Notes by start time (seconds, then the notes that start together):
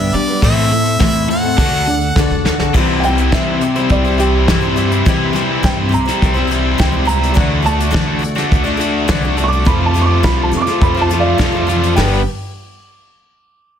Already playing: G2 D3 G3 B3 D4 G4 B4 D5 E5 B5
0.12 G3 B3 D4 B4 D5, closed hi-hat
0.28 G3 B3 D4 B4, closed hi-hat
0.40 A2 E3 A3 C4 E4 A4 E5 C6, kick, closed hi-hat
0.44 A4
0.71 A2 A3 C4 E4 A4, closed hi-hat
0.86 closed hi-hat
0.99 E2 A2 E3 A3 C4 E4 A4, kick, snare
1.28 A2 A3 C4 E4 A4 F#5, closed hi-hat
1.43 A3 C4 E4 A4
1.57 D2 D3 A3 D4 F#4 A4 D5, kick, closed hi-hat
1.87 D3 A3 D4 F#4, closed hi-hat
1.91 A4
2.01 closed hi-hat
2.16 D2 D3 A3 D4 F#4 A4, kick, snare
2.31 E2
2.45 D2 D3 A3 D4, snare
2.49 F#4 A4
2.59 C2 F#4 A4, snare
2.64 D4
2.74 C2 C3 E3 G3 C4 E4 G4 C5 E5 C6, kick, crash
3.00 E3 F#5, closed hi-hat
3.04 G3 C4 E4 C5 G5
3.18 G3 C4 E4, closed hi-hat
3.32 C3 E3 G3 C4 E4 C5 E5, kick, snare, closed hi-hat
3.47 G3 C4 E4
3.61 G3 C4 E4 C5, muted overdriven electric guitar stroke, closed hi-hat
3.76 C4 E4 C5, closed hi-hat
3.80 G3
3.90 C2 D5, kick, closed hi-hat
4.05 G3 C4 E4 C5
4.18 E3 G3 C4 E4 G4 C5, closed hi-hat
4.48 G2 C3 E3 G3 C4 E4 C5, kick, snare, closed hi-hat
4.61 C4 E4 C5
4.65 G3
4.76 E3 G3 C4 E4 C5, closed hi-hat
4.91 G3 C4 E4, closed hi-hat
5.06 C3 E3 G3 C4 E4 C5, kick, closed hi-hat
5.33 E3 G3 C4 E4 C5, closed hi-hat
5.49 G3 C4 E4
5.63 G2 C3 E3 G3 C4 E4 C5 G5, kick, snare, closed hi-hat
5.79 G3 C4 E4
5.89 G3 C4 E4 C5
5.93 C2 A#5, muted overdriven electric guitar stroke, closed hi-hat
6.05 G3 C4 E4 C5, snare, closed hi-hat
6.22 C2, kick, closed hi-hat
6.34 G3 C4 E4 C5
6.47 E3 G3 C4 E4 C5, closed hi-hat
6.51 G3 C4
6.78 C#2 C3 E3 G3 C4 E4 C5 G5, kick, snare, closed hi-hat
6.92 G3 C4 E4 C5
7.05 E3 G3 C4 E4 C5 A#5, closed hi-hat
7.21 G3 C4 E4, closed hi-hat
7.34 D2 D3 E3 A3 D4 F#4 D5 E5, kick, closed hi-hat
7.62 D3 A3 D4 F#4 A5, closed hi-hat
7.67 D5
7.79 A3 D4 F#4, closed hi-hat
7.91 D3 E3 A3 D4 F#4 D5, kick
7.95 D3, snare, closed hi-hat
8.06 A3 D4 F#4
8.19 A3 D4 F#4 D5, muted overdriven electric guitar stroke
8.24 closed hi-hat
8.35 A3 D4 F#4 D5, snare, closed hi-hat
8.51 D2, kick, closed hi-hat
8.64 A3 D4 F#4 D5
8.77 D3 A3 D4 F#4 D5, closed hi-hat
9.08 C2 D3 E3 A3 D4 F#4 D5, kick, snare, closed hi-hat
9.22 A3 D4 F#4 D5
9.36 D3 A3 D4 F#4 D5, closed hi-hat
9.44 C#6
9.48 D4 F#4 D6
9.52 A3, closed hi-hat
9.65 F2 C3 F3 A3 C4 F4 A4 C5 F5 B5 C6, kick, closed hi-hat
9.86 A5
9.94 F3 A3 C4 F4 A4 C5, closed hi-hat
10.02 C#6 D6
10.09 F3 A3 C4 F4
10.23 C2 F2 C3 F3 A3 C4 F4 A4 C5 B5, kick, snare, closed hi-hat
10.36 F3 A3 C4 F4
10.43 A5
10.51 F2 F3 F4 A4 C5, muted overdriven electric guitar stroke, closed hi-hat
10.57 C#6
10.61 D6
10.66 F3 A3 C4 F4 A4 C5, snare, closed hi-hat
10.70 F4
10.81 F2 B5, kick, closed hi-hat
10.95 F3 A3 C4 A4 C5
10.99 F4 A5
11.09 F3 A3 C4 F4 A4, closed hi-hat
11.14 C5
11.20 D5 F5
11.38 F2 C3 F3 A3 C4 F4 A4 C5, kick, snare, closed hi-hat
11.52 A4 C5
11.57 F4
11.67 F3 A3 C4 F4 A4, closed hi-hat
11.71 C5
11.82 F3 A3 C4 F4, closed hi-hat
11.96 G1 G2 G3 B3 D4 G4 B4 G5, snare, open hi-hat